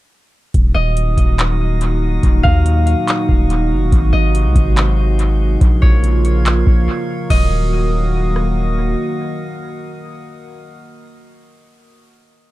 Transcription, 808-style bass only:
0.54 0.75 D#1 loud
0.75 1.16 D#1 loud
1.17 2.19 D#1 loud
2.23 2.44 D#1 loud
2.45 2.95 D#2 loud
3.29 3.73 D#1 loud
3.71 3.83 F#1 medium
3.82 3.92 D#1 loud
3.92 4.13 G#1 loud
4.13 4.47 G#1 loud
4.45 4.55 C2 loud
4.55 5.57 G#1 loud
5.61 5.82 A#1 loud
5.83 6.64 A#1 loud
6.67 6.88 A#1 loud
7.30 8.95 D#1 loud

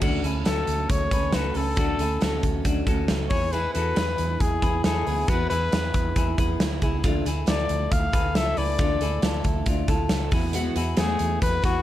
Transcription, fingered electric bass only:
0.02 0.20 D2 loud
0.24 0.42 D2 medium
0.46 0.64 D2 medium
0.68 0.86 D2 medium
0.90 1.08 D2 medium
1.11 1.29 D2 loud
1.34 1.52 C#2 medium
1.55 1.73 C#2 medium
1.77 1.95 D2 loud
1.99 2.17 D2 medium
2.22 2.40 D2 medium
2.43 2.61 D2 medium
2.65 2.83 D2 medium
2.86 3.05 D2 medium
3.09 3.27 C#2 medium
3.31 3.67 E2 medium
3.75 3.93 E2 medium
3.97 4.15 E2 medium
4.19 4.37 E2 medium
4.41 4.59 E2 medium
4.62 4.80 E2 loud
4.85 5.03 E2 medium
5.07 5.25 D2 medium
5.28 5.46 E2 loud
5.51 5.69 E2 medium
5.73 5.91 E2 medium
5.94 6.12 E2 medium
6.16 6.34 E2 medium
6.38 6.56 E2 medium
6.60 6.78 D2 medium
6.82 7.00 C#2 medium
7.04 7.22 D2 loud
7.25 7.44 D2 medium
7.47 7.66 D2 medium
7.70 7.88 D2 medium
7.92 8.10 D2 medium
8.13 8.31 D2 loud
8.35 8.53 C#2 medium
8.57 8.75 C#2 medium
8.79 8.97 D2 loud
9.01 9.19 D2 medium
9.22 9.41 D2 medium
9.45 9.63 D2 medium
9.66 9.85 D2 medium
9.88 10.07 D2 medium
10.10 10.29 C#2 medium
10.32 10.68 E2 medium
10.75 10.94 E2 loud
10.98 11.16 E2 medium
11.20 11.38 E2 medium
11.42 11.60 E2 loud
11.64 11.82 E2 loud

